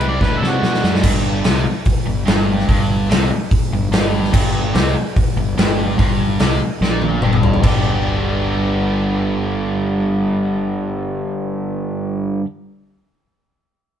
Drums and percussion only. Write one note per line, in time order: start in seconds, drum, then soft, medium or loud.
0.01 ride medium
0.21 kick loud
0.21 snare medium
0.44 snare medium
0.63 snare medium
0.74 snare medium
0.84 snare medium
0.95 snare medium
1.04 kick loud
1.04 crash loud
1.44 snare loud
1.44 open hi-hat medium
1.85 kick loud
1.85 open hi-hat medium
2.27 snare loud
2.27 open hi-hat medium
2.60 snare soft
2.69 kick loud
2.69 open hi-hat medium
3.11 snare loud
3.11 open hi-hat medium
3.51 kick loud
3.51 open hi-hat medium
3.93 snare loud
3.93 open hi-hat medium
4.24 snare soft
4.34 kick loud
4.34 crash loud
4.75 snare loud
4.75 open hi-hat medium
5.16 kick loud
5.16 open hi-hat medium
5.58 snare loud
5.58 open hi-hat medium
5.99 kick loud
5.99 open hi-hat medium
6.39 snare loud
6.39 open hi-hat medium
6.83 snare medium
7.02 high tom medium
7.22 mid tom medium
7.33 mid tom medium
7.43 floor tom loud
7.54 floor tom medium
7.64 kick loud
7.64 crash medium